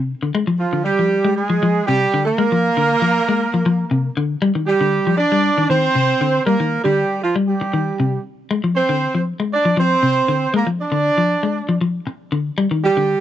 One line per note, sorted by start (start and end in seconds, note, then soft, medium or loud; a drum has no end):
0.00 0.14 C3 medium
0.23 0.31 D3 medium
0.35 0.43 G#3 medium
0.47 0.65 F3 medium
0.58 0.82 F3 medium
0.58 0.82 F4 medium
0.73 0.91 D3 medium
0.84 1.32 G3 medium
0.84 1.32 G4 loud
0.99 1.17 F3 medium
1.25 1.42 G#3 medium
1.36 1.83 G#3 medium
1.36 1.83 G#4 medium
1.50 1.58 F3 medium
1.63 1.80 F3 medium
1.87 2.06 C3 medium
1.87 2.22 G3 medium
1.87 2.22 G4 loud
2.14 2.31 D3 medium
2.26 4.13 A#3 loud
2.26 4.13 A#4 loud
2.38 2.47 G#3 medium
2.52 2.70 F3 medium
2.77 2.95 D3 medium
3.02 3.20 F3 medium
3.29 3.46 G#3 medium
3.54 3.62 F3 medium
3.66 3.84 F3 medium
3.91 4.09 C3 medium
4.17 4.35 D3 medium
4.42 4.51 G3 loud
4.55 4.73 D#3 medium
4.67 5.15 G3 medium
4.67 5.15 G4 loud
4.81 4.99 D3 medium
5.07 5.25 F3 medium
5.18 5.65 D4 loud
5.18 5.65 D5 loud
5.32 5.50 G3 medium
5.58 5.66 D#3 medium
5.70 5.88 D#3 medium
5.70 6.42 C4 loud
5.70 6.42 C5 loud
5.95 6.13 C3 medium
6.21 6.39 D3 medium
6.46 6.56 G3 medium
6.46 6.82 A#3 medium
6.46 6.82 A#4 loud
6.60 6.78 D#3 medium
6.84 7.03 D3 medium
6.84 7.19 G3 medium
6.84 7.19 G4 loud
7.23 7.35 F3 medium
7.23 7.35 F4 medium
7.36 7.54 G3 medium
7.48 8.21 G3 medium
7.48 8.21 G4 medium
7.61 muted clean electric guitar stroke medium
7.73 7.92 D#3 medium
8.00 8.17 C3 medium
8.51 8.60 G#3 medium
8.64 8.82 F3 medium
8.76 9.23 C4 medium
8.76 9.23 C5 loud
8.89 9.07 D3 medium
9.15 9.32 F3 medium
9.40 9.58 G#3 medium
9.54 9.77 D4 medium
9.54 9.77 D5 loud
9.65 9.74 F3 medium
9.77 9.95 F3 medium
9.77 10.51 C4 loud
9.77 10.51 C5 loud
10.03 10.21 C3 medium
10.28 10.46 D3 medium
10.54 10.63 G#3 medium
10.54 10.67 A#3 medium
10.54 10.67 A#4 medium
10.67 10.85 F3 medium
10.81 11.78 D4 medium
10.81 11.78 D5 loud
10.92 11.10 D3 medium
11.18 11.36 F3 medium
11.43 11.61 G#3 medium
11.69 11.77 F3 medium
11.81 11.99 F3 medium
12.07 muted clean electric guitar stroke medium
12.32 12.50 D3 medium
12.58 12.67 G3 loud
12.71 12.89 D#3 medium
12.84 13.20 G3 medium
12.84 13.20 G4 medium
12.97 13.15 D3 medium